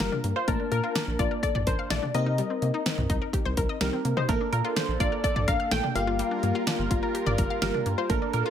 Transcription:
Already playing: A#3 F4 G4
0.00 G1 G3 A#4, snare, closed hi-hat
0.12 D4, mid tom
0.24 G2 A#3, closed hi-hat
0.36 F4 C5
0.48 A#1 A3 A#3 D4 A#4 A5, kick, closed hi-hat
0.60 D4
0.72 A#2 A#3 A#4, closed hi-hat
0.83 F4
0.95 D4, snare, closed hi-hat
1.07 A#1
1.19 A#1 F4 D5, kick, closed hi-hat
1.31 A#4
1.43 A4 D5, kick, closed hi-hat
1.55 A#1 D5, mid tom
1.67 A#1 A#4 C5, kick, closed hi-hat
1.79 F5
1.90 A#1 A3 D5, snare, closed hi-hat
2.02 D4, mid tom
2.14 C3 A#3 C4 D#4 A#4 D#5, closed hi-hat
2.26 D#4
2.38 G3, closed hi-hat
2.50 C4
2.62 C3 A#3, closed hi-hat
2.74 D#4
2.86 C4, snare, closed hi-hat
2.98 C2, mid tom
3.10 C2 D#4, kick, closed hi-hat
3.22 A#4
3.33 G4, kick, closed hi-hat
3.45 C2 C5
3.57 C2 A#4, kick, closed hi-hat
3.69 D#5
3.81 C2 G3 C4 D#4 G4 A#4, snare, closed hi-hat
3.93 C4
4.05 C3 A#3, closed hi-hat
4.17 D#4 C5, mid tom
4.29 A#1 A3 A#3 D4 A4 A#4, kick, closed hi-hat
4.41 D4
4.53 A#2 A#3 A#4, closed hi-hat
4.65 F4
4.76 D4 C5, snare, closed hi-hat
4.88 A#1
5.00 A#1 F4 D5, kick, closed hi-hat
5.12 A#4
5.24 A4 D5, kick, closed hi-hat
5.36 A#1 D5, mid tom
5.48 A#1 A#4 F5, kick, closed hi-hat
5.60 F5
5.71 A#1 A3 G5, snare, closed hi-hat
5.83 D4, mid tom
5.95 G1 G3 A#3 F4 G4 A#4 F5, closed hi-hat
6.07 F4
6.19 G3, closed hi-hat
6.31 D4
6.43 G2 A#3, closed hi-hat
6.55 F4
6.67 D4, snare, closed hi-hat
6.79 G1
6.91 G1 F4, kick, closed hi-hat
7.03 A#4
7.15 G4, closed hi-hat
7.26 G1 D5, mid tom
7.38 G1 A#4, kick, closed hi-hat
7.50 F5
7.62 G1 G3 A#3 F4 G4 A#4, snare, closed hi-hat
7.74 D4, mid tom
7.86 G2 A#3, closed hi-hat
7.98 F4 C5
8.10 A#1 A3 A#3 D4 A4 A#4, kick, closed hi-hat
8.22 D4
8.33 A#2 A#3 A#4, closed hi-hat
8.46 F4

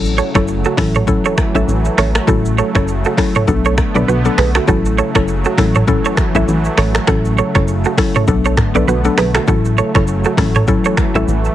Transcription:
Already playing: A1 C#3 F#3 A3 C#4 E4 A4
0.05 shaker
0.18 A4 C#5, shaker
0.35 F#1 F#3 C#4 E4 A4 C#5, finger snap, kick, cross-stick, shaker
0.48 shaker
0.64 F#4 A4, shaker
0.77 A1 E3 F#3 C#4 E4 A4, finger snap, kick, cross-stick, open hi-hat, shaker
0.95 A4 C#5, mid tom, shaker
1.07 F#3 C#4 E4 A4, kick, shaker
1.25 A4 C#5, shaker
1.38 finger snap, kick, cross-stick, shaker
1.55 A1 F#3 C#4 E4 A4 C#5 E5, shaker
1.68 A1, shaker
1.85 shaker
1.98 A1 A4 C#5, finger snap, cross-stick, open hi-hat, shaker
2.15 finger snap, cross-stick, shaker
2.27 A1 C#3 F#3 C#4 E4 F#4 A4, kick, shaker
2.45 shaker
2.58 A4 C#5, shaker
2.75 F#1 F#3 C#4 E4 A4 C#5, finger snap, kick, cross-stick, shaker
2.88 shaker
3.04 F#4 A4, shaker
3.17 F#3 C#4 E4 A4, finger snap, kick, cross-stick, open hi-hat, shaker
3.35 A4 C#5, mid tom, shaker
3.47 B1 D3 F#3 B3 D4 A4, kick, shaker
3.65 A4 C#5, shaker
3.78 finger snap, kick, cross-stick, shaker
3.95 B1 F#3 B3 D4 A4 B4 D5, shaker
4.08 B1 F#4 B4, shaker
4.25 F#3 B3 D4 A4, shaker
4.38 B1 G#4 B4, finger snap, cross-stick, open hi-hat, shaker
4.55 F#4 A4, finger snap, cross-stick, shaker
4.67 A1 C#3 F#3 C#4 E4 F#4 A4, kick, shaker
4.85 shaker
4.98 A4 C#5, shaker
5.15 F#1 F#3 C#4 E4 A4 C#5, finger snap, kick, cross-stick, shaker
5.28 shaker
5.45 F#4 A4, shaker
5.58 A1 E3 F#3 A3 C#4 E4 A4, finger snap, kick, cross-stick, open hi-hat, shaker
5.75 A4 C#5, mid tom, shaker
5.87 F#3 C#4 E4 A4, kick, shaker
6.05 A4 C#5, shaker
6.17 finger snap, kick, cross-stick, shaker
6.35 A1 F#3 C#4 E4 A4 C#5 E5, shaker
6.48 A1, shaker
6.65 shaker
6.78 A1 A4 C#5, finger snap, cross-stick, open hi-hat, shaker
6.95 finger snap, cross-stick, shaker
7.07 A1 C#3 F#3 C#4 E4 F#4 A4, finger snap, kick, cross-stick, shaker
7.25 shaker
7.38 A4 C#5, shaker
7.55 F#1 F#3 C#4 E4 A4 C#5, finger snap, kick, cross-stick, shaker
7.68 shaker
7.84 F#4 A4, shaker
7.98 F#3 C#4 E4 A4, finger snap, kick, cross-stick, open hi-hat, shaker
8.15 A4 C#5, mid tom, shaker
8.28 B1 D3 F#3 B3 D4 A4, kick, shaker
8.45 A4 C#5, shaker
8.57 finger snap, kick, cross-stick, mid tom, shaker
8.75 B1 F#3 B3 D4 A4 B4 D5, shaker
8.88 B1 F#4 B4, shaker
9.04 F#3 B3 D4 A4, shaker
9.18 B1 G#4 B4, finger snap, cross-stick, open hi-hat, shaker
9.35 F#4 A4, finger snap, cross-stick, shaker
9.47 A1 C#3 F#3 C#4 E4 F#4 A4, kick, shaker
9.65 shaker
9.78 A4 C#5, shaker
9.95 F#1 F#3 C#4 E4 A4 C#5, finger snap, kick, cross-stick, shaker
10.07 shaker
10.24 F#4 A4, shaker
10.37 A1 E3 F#3 C#4 E4 A4, finger snap, kick, cross-stick, open hi-hat, shaker
10.55 A4 C#5, mid tom, shaker
10.68 F#3 C#4 E4 A4, kick, shaker
10.85 A4 C#5, shaker
10.97 finger snap, kick, cross-stick, shaker
11.15 A1 F#3 C#4 E4 A4 C#5 E5, shaker
11.28 A1, shaker
11.45 shaker

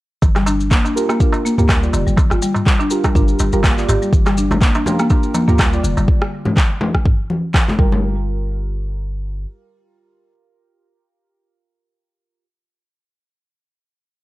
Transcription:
0.22 G1, kick, darbuka tek, darbuka dum, maracas
0.35 G3, cross-stick, clap, darbuka ka, maracas
0.46 D4, darbuka tek, maracas
0.60 maracas
0.71 A#3, kick, clap, maracas
0.85 D4, darbuka tek, maracas
0.96 F4 G4 A#4, maracas
1.09 A#3, cross-stick, darbuka tek, maracas
1.20 D4 F4 G4 A#4, kick, maracas
1.32 darbuka tek, maracas
1.45 A#3, maracas
1.58 D2 A#3 F4 G4 A#4, mid tom, maracas
1.69 G3, kick, cross-stick, clap, darbuka tek, maracas
1.82 F4 G4 D5, maracas
1.93 F1 D3, darbuka tek, maracas
2.07 G1 G3, maracas
2.16 kick, darbuka ka, darbuka tek, darbuka dum, maracas
2.30 G1 F4, cross-stick, darbuka ka, maracas
2.42 G3, maracas
2.54 mid tom, darbuka tek, maracas
2.66 G3, kick, clap, maracas
2.79 D4, darbuka tek, maracas
2.90 F4 G4 A#4, maracas
3.04 G3, kick, cross-stick, darbuka tek, maracas
3.15 G1 D4 F4 G4 A#4, kick, mid tom, maracas
3.28 maracas
3.39 G1 G3, darbuka tek, maracas
3.53 G1 G3 F4 G4 A#4, maracas
3.63 A#3, kick, cross-stick, clap, darbuka tek, maracas
3.77 F4 G4 D5, clap, maracas
3.89 G1 G4, mid tom, darbuka tek, maracas
4.02 G3, maracas
4.13 G1, kick, darbuka dum, maracas
4.26 G3, cross-stick, clap, darbuka ka, darbuka tek, maracas
4.38 D4, maracas
4.51 high conga, darbuka tek, low conga, maracas
4.62 A#3, kick, clap, maracas
4.75 D4, darbuka tek, maracas
4.86 F4 G4 A#4, high conga, low conga, maracas
4.99 A#3, cross-stick, maracas
5.10 D4 F4 G4 A#4, kick, darbuka tek, maracas
5.23 maracas
5.34 A#3, high conga, darbuka tek, maracas
5.48 D2 A#3 F4 G4 A#4, mid tom, maracas
5.58 G3, kick, cross-stick, clap, darbuka tek, maracas
5.73 F4 G4 D5, maracas
5.83 F1 D3, maracas
5.97 G1 G3, darbuka tek, maracas
6.08 kick
6.22 cross-stick
6.45 mid tom, high conga, low conga
6.57 kick, clap
6.81 high conga, low conga
6.95 kick, cross-stick
7.05 kick, mid tom
7.30 high conga
7.54 kick, cross-stick, clap, high conga
7.68 clap, low conga
7.79 G1 G3 F4 G4 A#4, kick
7.92 low conga

